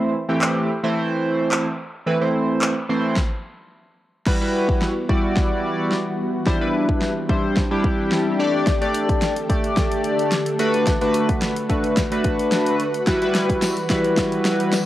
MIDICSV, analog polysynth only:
0, 0, Header, 1, 2, 480
1, 0, Start_track
1, 0, Key_signature, 1, "minor"
1, 0, Tempo, 550459
1, 1800, Time_signature, 4, 2, 24, 8
1, 12954, End_track
2, 0, Start_track
2, 0, Title_t, "Analog polysynth"
2, 0, Program_c, 0, 90
2, 0, Note_on_c, 0, 52, 96
2, 0, Note_on_c, 0, 57, 89
2, 0, Note_on_c, 0, 60, 88
2, 0, Note_on_c, 0, 64, 88
2, 0, Note_on_c, 0, 72, 104
2, 119, Note_off_c, 0, 52, 0
2, 120, Note_off_c, 0, 57, 0
2, 121, Note_off_c, 0, 60, 0
2, 121, Note_off_c, 0, 64, 0
2, 121, Note_off_c, 0, 72, 0
2, 248, Note_on_c, 0, 52, 93
2, 249, Note_on_c, 0, 57, 85
2, 251, Note_on_c, 0, 60, 83
2, 251, Note_on_c, 0, 64, 83
2, 252, Note_on_c, 0, 67, 100
2, 602, Note_off_c, 0, 52, 0
2, 603, Note_off_c, 0, 57, 0
2, 604, Note_off_c, 0, 60, 0
2, 604, Note_off_c, 0, 64, 0
2, 605, Note_off_c, 0, 67, 0
2, 727, Note_on_c, 0, 52, 92
2, 728, Note_on_c, 0, 57, 83
2, 730, Note_on_c, 0, 60, 88
2, 730, Note_on_c, 0, 64, 83
2, 732, Note_on_c, 0, 72, 102
2, 1451, Note_off_c, 0, 52, 0
2, 1452, Note_off_c, 0, 57, 0
2, 1452, Note_off_c, 0, 60, 0
2, 1453, Note_off_c, 0, 64, 0
2, 1453, Note_off_c, 0, 72, 0
2, 1800, Note_on_c, 0, 52, 90
2, 1801, Note_on_c, 0, 57, 86
2, 1801, Note_on_c, 0, 60, 84
2, 1803, Note_on_c, 0, 64, 83
2, 1803, Note_on_c, 0, 71, 104
2, 1896, Note_off_c, 0, 52, 0
2, 1896, Note_off_c, 0, 60, 0
2, 1897, Note_off_c, 0, 57, 0
2, 1897, Note_off_c, 0, 64, 0
2, 1897, Note_off_c, 0, 71, 0
2, 1927, Note_on_c, 0, 52, 86
2, 1927, Note_on_c, 0, 57, 83
2, 1928, Note_on_c, 0, 60, 82
2, 1929, Note_on_c, 0, 64, 80
2, 1931, Note_on_c, 0, 72, 100
2, 2378, Note_off_c, 0, 52, 0
2, 2378, Note_off_c, 0, 57, 0
2, 2379, Note_off_c, 0, 60, 0
2, 2379, Note_off_c, 0, 64, 0
2, 2380, Note_off_c, 0, 72, 0
2, 2520, Note_on_c, 0, 52, 89
2, 2521, Note_on_c, 0, 57, 78
2, 2522, Note_on_c, 0, 60, 81
2, 2523, Note_on_c, 0, 64, 84
2, 2525, Note_on_c, 0, 72, 99
2, 2760, Note_off_c, 0, 52, 0
2, 2760, Note_off_c, 0, 57, 0
2, 2761, Note_off_c, 0, 60, 0
2, 2761, Note_off_c, 0, 64, 0
2, 2762, Note_off_c, 0, 72, 0
2, 3718, Note_on_c, 0, 55, 92
2, 3720, Note_on_c, 0, 64, 80
2, 3721, Note_on_c, 0, 66, 81
2, 3723, Note_on_c, 0, 71, 97
2, 3815, Note_off_c, 0, 55, 0
2, 3816, Note_off_c, 0, 64, 0
2, 3816, Note_off_c, 0, 66, 0
2, 3817, Note_off_c, 0, 71, 0
2, 3845, Note_on_c, 0, 55, 88
2, 3846, Note_on_c, 0, 64, 80
2, 3848, Note_on_c, 0, 66, 78
2, 3849, Note_on_c, 0, 71, 97
2, 4297, Note_off_c, 0, 55, 0
2, 4297, Note_off_c, 0, 64, 0
2, 4299, Note_off_c, 0, 66, 0
2, 4299, Note_off_c, 0, 71, 0
2, 4438, Note_on_c, 0, 55, 85
2, 4439, Note_on_c, 0, 64, 78
2, 4440, Note_on_c, 0, 66, 79
2, 4442, Note_on_c, 0, 74, 94
2, 5163, Note_off_c, 0, 55, 0
2, 5164, Note_off_c, 0, 64, 0
2, 5165, Note_off_c, 0, 66, 0
2, 5165, Note_off_c, 0, 74, 0
2, 5638, Note_on_c, 0, 55, 89
2, 5639, Note_on_c, 0, 62, 80
2, 5639, Note_on_c, 0, 64, 84
2, 5642, Note_on_c, 0, 72, 101
2, 5735, Note_off_c, 0, 55, 0
2, 5735, Note_off_c, 0, 62, 0
2, 5735, Note_off_c, 0, 64, 0
2, 5737, Note_off_c, 0, 72, 0
2, 5763, Note_on_c, 0, 55, 85
2, 5765, Note_on_c, 0, 62, 83
2, 5767, Note_on_c, 0, 64, 81
2, 5767, Note_on_c, 0, 71, 100
2, 6216, Note_off_c, 0, 55, 0
2, 6217, Note_off_c, 0, 62, 0
2, 6218, Note_off_c, 0, 64, 0
2, 6218, Note_off_c, 0, 71, 0
2, 6358, Note_on_c, 0, 55, 85
2, 6360, Note_on_c, 0, 62, 82
2, 6361, Note_on_c, 0, 64, 80
2, 6362, Note_on_c, 0, 72, 95
2, 6632, Note_off_c, 0, 55, 0
2, 6633, Note_off_c, 0, 62, 0
2, 6634, Note_off_c, 0, 64, 0
2, 6635, Note_off_c, 0, 72, 0
2, 6723, Note_on_c, 0, 55, 89
2, 6725, Note_on_c, 0, 62, 81
2, 6725, Note_on_c, 0, 64, 81
2, 6726, Note_on_c, 0, 67, 96
2, 7308, Note_off_c, 0, 62, 0
2, 7310, Note_off_c, 0, 67, 0
2, 7317, Note_on_c, 0, 57, 95
2, 7318, Note_off_c, 0, 55, 0
2, 7319, Note_off_c, 0, 64, 0
2, 7319, Note_on_c, 0, 62, 90
2, 7320, Note_on_c, 0, 67, 87
2, 7321, Note_on_c, 0, 74, 107
2, 7609, Note_off_c, 0, 57, 0
2, 7610, Note_off_c, 0, 62, 0
2, 7611, Note_off_c, 0, 67, 0
2, 7612, Note_off_c, 0, 74, 0
2, 7683, Note_on_c, 0, 57, 89
2, 7685, Note_on_c, 0, 62, 81
2, 7687, Note_on_c, 0, 67, 79
2, 7687, Note_on_c, 0, 74, 100
2, 8136, Note_off_c, 0, 57, 0
2, 8137, Note_off_c, 0, 62, 0
2, 8138, Note_off_c, 0, 67, 0
2, 8138, Note_off_c, 0, 74, 0
2, 8278, Note_on_c, 0, 57, 86
2, 8279, Note_on_c, 0, 62, 80
2, 8281, Note_on_c, 0, 67, 82
2, 8282, Note_on_c, 0, 74, 95
2, 9003, Note_off_c, 0, 57, 0
2, 9004, Note_off_c, 0, 62, 0
2, 9005, Note_off_c, 0, 67, 0
2, 9006, Note_off_c, 0, 74, 0
2, 9236, Note_on_c, 0, 57, 92
2, 9237, Note_on_c, 0, 62, 84
2, 9239, Note_on_c, 0, 66, 82
2, 9240, Note_on_c, 0, 71, 106
2, 9529, Note_off_c, 0, 57, 0
2, 9529, Note_off_c, 0, 62, 0
2, 9530, Note_off_c, 0, 66, 0
2, 9531, Note_off_c, 0, 71, 0
2, 9603, Note_on_c, 0, 57, 88
2, 9604, Note_on_c, 0, 62, 81
2, 9606, Note_on_c, 0, 66, 78
2, 9607, Note_on_c, 0, 71, 102
2, 10056, Note_off_c, 0, 57, 0
2, 10057, Note_off_c, 0, 62, 0
2, 10058, Note_off_c, 0, 66, 0
2, 10058, Note_off_c, 0, 71, 0
2, 10196, Note_on_c, 0, 57, 91
2, 10199, Note_on_c, 0, 62, 83
2, 10200, Note_on_c, 0, 66, 78
2, 10201, Note_on_c, 0, 71, 91
2, 10471, Note_off_c, 0, 57, 0
2, 10473, Note_off_c, 0, 62, 0
2, 10473, Note_off_c, 0, 66, 0
2, 10474, Note_off_c, 0, 71, 0
2, 10566, Note_on_c, 0, 57, 88
2, 10568, Note_on_c, 0, 62, 81
2, 10568, Note_on_c, 0, 66, 82
2, 10570, Note_on_c, 0, 71, 94
2, 11195, Note_off_c, 0, 57, 0
2, 11196, Note_off_c, 0, 62, 0
2, 11196, Note_off_c, 0, 66, 0
2, 11197, Note_off_c, 0, 71, 0
2, 11396, Note_on_c, 0, 55, 91
2, 11399, Note_on_c, 0, 64, 86
2, 11399, Note_on_c, 0, 66, 84
2, 11400, Note_on_c, 0, 71, 101
2, 11494, Note_off_c, 0, 55, 0
2, 11495, Note_off_c, 0, 64, 0
2, 11495, Note_off_c, 0, 66, 0
2, 11496, Note_off_c, 0, 71, 0
2, 11524, Note_on_c, 0, 55, 92
2, 11525, Note_on_c, 0, 64, 79
2, 11527, Note_on_c, 0, 66, 83
2, 11528, Note_on_c, 0, 71, 99
2, 11977, Note_off_c, 0, 55, 0
2, 11977, Note_off_c, 0, 64, 0
2, 11978, Note_off_c, 0, 66, 0
2, 11979, Note_off_c, 0, 71, 0
2, 12116, Note_on_c, 0, 55, 88
2, 12117, Note_on_c, 0, 64, 80
2, 12119, Note_on_c, 0, 66, 81
2, 12120, Note_on_c, 0, 71, 96
2, 12843, Note_off_c, 0, 55, 0
2, 12843, Note_off_c, 0, 64, 0
2, 12844, Note_off_c, 0, 66, 0
2, 12845, Note_off_c, 0, 71, 0
2, 12954, End_track
0, 0, End_of_file